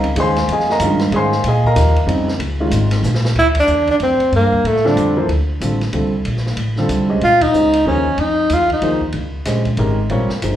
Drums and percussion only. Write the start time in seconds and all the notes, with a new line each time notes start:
0.04 kick, ride
0.16 ride
0.36 snare, ride
0.49 ride
0.60 snare
0.70 snare
0.80 hi-hat pedal, ride
0.99 snare, ride
1.12 ride
1.32 snare
1.44 ride
1.64 kick
1.76 snare, hi-hat pedal, ride
1.96 kick, ride
2.09 ride
2.28 snare
2.40 ride
2.71 hi-hat pedal, ride
2.91 snare, ride
3.04 snare, hi-hat pedal
3.14 snare
3.25 snare
3.36 kick, crash
3.55 kick, ride
3.67 hi-hat pedal
3.87 kick, ride
4.00 ride
4.20 ride
4.32 ride
4.52 kick
4.65 ride
4.76 snare
4.86 snare
4.97 hi-hat pedal, ride
5.29 ride
5.61 hi-hat pedal, ride
5.81 snare, ride
5.93 ride
6.25 ride
6.37 snare
6.46 snare
6.57 ride
6.76 snare
6.89 hi-hat pedal, ride
7.21 ride
7.41 kick, ride
7.54 hi-hat pedal
7.73 ride
8.05 kick
8.18 ride
8.50 hi-hat pedal, ride
8.69 kick, ride
8.82 ride
9.01 kick
9.12 ride
9.45 snare, hi-hat pedal, ride
9.65 kick, ride
9.77 ride
10.10 ride
10.29 snare
10.42 hi-hat pedal, ride